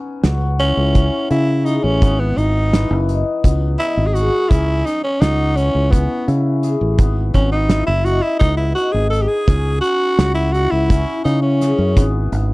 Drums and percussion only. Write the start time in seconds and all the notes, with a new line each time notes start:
0.24 snare, closed hi-hat
0.59 snare, closed hi-hat
0.95 kick, closed hi-hat
1.31 closed hi-hat
1.66 closed hi-hat
2.02 kick, closed hi-hat
2.38 closed hi-hat
2.73 snare, closed hi-hat
3.09 closed hi-hat
3.44 kick, closed hi-hat
3.80 closed hi-hat
4.16 closed hi-hat
4.51 kick, closed hi-hat
4.87 snare, closed hi-hat
5.22 snare, closed hi-hat
5.57 closed hi-hat
5.93 kick, closed hi-hat
6.28 closed hi-hat
6.63 closed hi-hat
6.98 kick, closed hi-hat
7.34 kick, closed hi-hat
7.70 snare, closed hi-hat
8.06 closed hi-hat
8.41 kick, closed hi-hat
8.77 closed hi-hat
9.13 closed hi-hat
9.48 kick, closed hi-hat
9.84 closed hi-hat
10.19 snare, closed hi-hat
10.55 closed hi-hat
10.90 kick, closed hi-hat
11.26 closed hi-hat
11.61 snare, closed hi-hat
11.97 kick, closed hi-hat
12.32 closed hi-hat